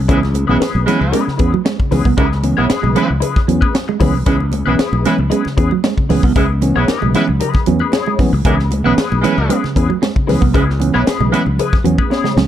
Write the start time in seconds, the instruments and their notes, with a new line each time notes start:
0.08 fingered electric bass C#2, tine electric piano E3 B3 C#4, horn section G#3 B3 E4 B4, clean electric guitar C#4 E4 G#4 B4, kick, closed hi-hat
0.22 muted clean electric guitar stroke, snare, muted conga
0.34 tine electric piano C#3, muted clean electric guitar stroke, closed hi-hat, high conga
0.47 fingered electric bass B1, tine electric piano E3 B3 C#4, horn section G#3 B3 E4 B4, clean electric guitar B3 E4 G#4 B4
0.59 clean electric guitar E4 G#4 B4, muted fingered electric bass stroke, snare, closed hi-hat, muted conga
0.75 fingered electric bass B1, high conga
0.85 tine electric piano E3 B3 C#4, horn section G#3 B3 E4 B4, clean electric guitar G#3, muted clean electric guitar stroke, closed hi-hat, low conga
1.00 fingered electric bass C#2, muted clean electric guitar stroke, low conga
1.12 clean electric guitar G#3 E4 G#4 B4, tine electric piano B3 C#4, closed hi-hat, muted conga
1.25 tine electric piano C#3, muted clean electric guitar stroke, muted fingered electric bass stroke, snare
1.38 fingered electric bass E2, tine electric piano B3 C#4, clean electric guitar E4 G#4 B4, muted clean electric guitar stroke, kick, closed hi-hat
1.52 clean electric guitar F#3, muted clean electric guitar stroke, high conga
1.64 clean electric guitar G#3, tine electric piano B3 C#4, muted clean electric guitar stroke, snare, closed hi-hat
1.79 tine electric piano C#3, kick, muted conga
1.91 fingered electric bass C#2, tine electric piano E3 B3 C#4, clean electric guitar E4 G#4 B4, muted clean electric guitar stroke, snare, open hi-hat, high conga, low conga
2.05 fingered electric bass C2, clean electric guitar B3, muted clean electric guitar stroke, kick
2.17 fingered electric bass C#2, tine electric piano C#3, horn section G#3 B3 E4 B4, clean electric guitar C#4 E4 G#4 B4, kick, closed hi-hat
2.31 tine electric piano B3 C#4, muted clean electric guitar stroke, snare
2.43 tine electric piano E3 B3 C#4, muted clean electric guitar stroke, closed hi-hat, high conga
2.57 fingered electric bass B1, horn section G#3 B3 E4 B4, clean electric guitar B3 E4 G#4 C#5
2.69 tine electric piano B3 C#4, clean electric guitar E4 G#4 B4, muted clean electric guitar stroke, muted fingered electric bass stroke, snare, closed hi-hat
2.83 fingered electric bass B1, tine electric piano C#3, clean electric guitar G#3, high conga
2.95 tine electric piano E3 B3 C#4, horn section G#3 B3 E4 B4, clean electric guitar G#3, muted clean electric guitar stroke, closed hi-hat, low conga
3.10 fingered electric bass C#2, muted clean electric guitar stroke
3.20 tine electric piano C#3, clean electric guitar E4 G#4 B4, closed hi-hat
3.36 muted fingered electric bass stroke, kick, snare
3.48 fingered electric bass E2, tine electric piano E3 B3 C#4, clean electric guitar F#3, muted clean electric guitar stroke, closed hi-hat
3.61 tine electric piano B3 C#4, clean electric guitar E4 G#4 B4, kick, high conga
3.74 muted clean electric guitar stroke, snare, closed hi-hat, muted conga
3.88 clean electric guitar G#3, muted clean electric guitar stroke, muted conga
4.00 fingered electric bass C#2, tine electric piano E3 B3 C#4, clean electric guitar G#3 E4 G#4 B4, kick, snare, open hi-hat, high conga, low conga
4.14 fingered electric bass C2, muted clean electric guitar stroke
4.26 fingered electric bass C#2, tine electric piano E3 B3 C#4, horn section G#3 B3 E4 B4, clean electric guitar C#4 E4 G#4 B4, kick, closed hi-hat
4.40 muted clean electric guitar stroke, muted conga
4.52 tine electric piano C#3, muted clean electric guitar stroke, closed hi-hat, high conga
4.66 fingered electric bass B1, tine electric piano E3 B3 C#4, horn section G#3 B3 E4 B4, clean electric guitar B3 E4 G#4 B4
4.79 clean electric guitar E4 G#4 B4, muted fingered electric bass stroke, snare, closed hi-hat, muted conga
4.93 fingered electric bass B1, muted conga, high conga
5.04 tine electric piano E3 B3 C#4, horn section G#3 B3 E4 B4, clean electric guitar G#3, muted clean electric guitar stroke, closed hi-hat, low conga
5.18 fingered electric bass C#2, muted clean electric guitar stroke, low conga
5.30 clean electric guitar G#3 E4 G#4 B4, tine electric piano B3 C#4, closed hi-hat, muted conga
5.45 tine electric piano C#3, muted clean electric guitar stroke, muted fingered electric bass stroke, snare, muted conga
5.57 fingered electric bass E2, tine electric piano B3 C#4, clean electric guitar E4 G#4 B4, muted clean electric guitar stroke, kick, closed hi-hat
5.71 clean electric guitar F#3, muted clean electric guitar stroke, high conga
5.84 clean electric guitar G#3, tine electric piano B3 C#4, muted clean electric guitar stroke, snare, closed hi-hat
5.98 tine electric piano C#3, kick, muted conga
6.09 fingered electric bass C#2, tine electric piano E3 B3 C#4, clean electric guitar E4 G#4 B4, muted clean electric guitar stroke, snare, open hi-hat, high conga, low conga
6.23 fingered electric bass C2, clean electric guitar B3, muted clean electric guitar stroke, kick
6.35 fingered electric bass C#2, tine electric piano C#3, horn section G#3 B3 E4 B4, clean electric guitar C#4 E4 G#4 B4, kick, closed hi-hat, muted conga
6.50 tine electric piano B3 C#4, muted clean electric guitar stroke
6.62 tine electric piano E3 B3 C#4, muted clean electric guitar stroke, closed hi-hat, high conga
6.76 fingered electric bass B1, horn section G#3 B3 E4 B4, clean electric guitar B3 E4 G#4 C#5
6.87 tine electric piano B3 C#4, clean electric guitar E4 G#4 B4, muted clean electric guitar stroke, snare, closed hi-hat
7.02 fingered electric bass B1, tine electric piano C#3, clean electric guitar G#3, high conga
7.14 tine electric piano E3 B3 C#4, horn section G#3 B3 E4 B4, clean electric guitar G#3, muted clean electric guitar stroke, closed hi-hat, low conga
7.27 fingered electric bass C#2, muted clean electric guitar stroke, low conga
7.40 tine electric piano C#3, clean electric guitar E4 G#4 B4, closed hi-hat
7.54 muted fingered electric bass stroke, kick, snare, muted conga
7.66 fingered electric bass E2, tine electric piano E3 B3 C#4, clean electric guitar F#3, muted clean electric guitar stroke, closed hi-hat
7.79 tine electric piano B3 C#4, clean electric guitar E4 G#4 B4, high conga
7.92 clean electric guitar E4 G#4 C#5, muted clean electric guitar stroke, snare, closed hi-hat, muted conga
8.06 clean electric guitar G#3, muted conga
8.19 tine electric piano E3 B3 C#4, clean electric guitar G#3, muted fingered electric bass stroke, muted clean electric guitar stroke, kick, snare, open hi-hat, high conga, low conga
8.33 fingered electric bass C#2, muted clean electric guitar stroke
8.45 fingered electric bass C#2, tine electric piano E3 B3 C#4, horn section G#3 B3 E4 B4, clean electric guitar C#4 E4 G#4 B4, kick, closed hi-hat
8.59 muted clean electric guitar stroke, snare
8.71 tine electric piano C#3, muted clean electric guitar stroke, closed hi-hat, high conga
8.84 fingered electric bass B1, tine electric piano E3 B3 C#4, horn section G#3 B3 E4 B4, clean electric guitar B3 E4 G#4 B4
8.98 clean electric guitar E4 G#4 B4, muted fingered electric bass stroke, snare, closed hi-hat
9.12 fingered electric bass B1, muted conga, high conga
9.22 tine electric piano E3 B3 C#4, horn section G#3 B3 E4 B4, clean electric guitar G#3, muted clean electric guitar stroke, closed hi-hat, low conga
9.38 fingered electric bass C#2, muted clean electric guitar stroke, low conga
9.49 clean electric guitar G#3 E4 G#4 B4, tine electric piano B3 C#4, closed hi-hat
9.64 tine electric piano C#3, muted clean electric guitar stroke, muted fingered electric bass stroke, snare, muted conga
9.76 fingered electric bass E2, tine electric piano B3 C#4, clean electric guitar E4 G#4 B4, muted clean electric guitar stroke, kick, closed hi-hat
9.90 clean electric guitar F#3, muted clean electric guitar stroke, high conga
10.02 clean electric guitar G#3, tine electric piano B3 C#4, muted clean electric guitar stroke, snare, closed hi-hat, muted conga
10.16 tine electric piano C#3, kick, muted conga
10.27 fingered electric bass C#2, tine electric piano E3 B3 C#4, clean electric guitar E4 G#4 B4, muted clean electric guitar stroke, snare, open hi-hat, high conga, low conga
10.41 fingered electric bass C2, clean electric guitar B3, muted clean electric guitar stroke, kick
10.53 fingered electric bass C#2, tine electric piano C#3, horn section G#3 B3 E4 B4, clean electric guitar C#4 E4 G#4 B4, kick, closed hi-hat, muted conga
10.67 tine electric piano B3 C#4, muted clean electric guitar stroke, snare
10.80 tine electric piano E3 B3 C#4, muted clean electric guitar stroke, closed hi-hat, high conga
10.93 fingered electric bass B1, horn section G#3 B3 E4 B4, clean electric guitar B3 E4 G#4 C#5
11.06 tine electric piano B3 C#4, clean electric guitar E4 G#4 B4, muted clean electric guitar stroke, snare, closed hi-hat, muted conga
11.20 fingered electric bass B1, tine electric piano C#3, clean electric guitar G#3, high conga
11.31 tine electric piano E3 B3 C#4, horn section G#3 B3 E4 B4, clean electric guitar G#3, muted clean electric guitar stroke, closed hi-hat, low conga
11.46 fingered electric bass C#2, muted clean electric guitar stroke, low conga
11.59 tine electric piano C#3, clean electric guitar E4 G#4 B4, closed hi-hat, muted conga
11.72 muted fingered electric bass stroke, kick, snare, muted conga
11.84 fingered electric bass E2, tine electric piano E3 B3 C#4, clean electric guitar F#3, muted clean electric guitar stroke, closed hi-hat
11.98 tine electric piano B3 C#4, clean electric guitar E4 G#4 B4, kick, high conga
12.10 tine electric piano B3 C#4, clean electric guitar E4 G#4 C#5, muted clean electric guitar stroke, snare, muted conga
12.24 tine electric piano C#3, clean electric guitar G#3, snare, muted conga
12.36 fingered electric bass C#2, clean electric guitar G#3, tine electric piano B3 C#4, muted clean electric guitar stroke, snare, high conga, low conga